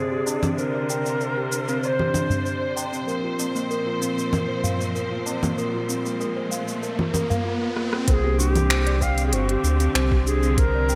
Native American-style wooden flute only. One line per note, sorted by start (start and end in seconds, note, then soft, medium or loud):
0.00 0.54 G#4 medium
0.57 1.79 A#4 medium
1.83 2.73 C5 loud
1.83 1.88 D5 medium
8.07 8.12 A#4 medium
8.11 8.40 G#4 medium
8.39 8.50 F#4 medium
8.50 9.03 G4 medium
9.01 9.25 F5 medium
9.26 9.34 G#4 medium
9.33 9.49 F#4 medium
9.49 10.26 G4 medium
10.26 10.60 G#4 loud
10.58 10.95 A#4 loud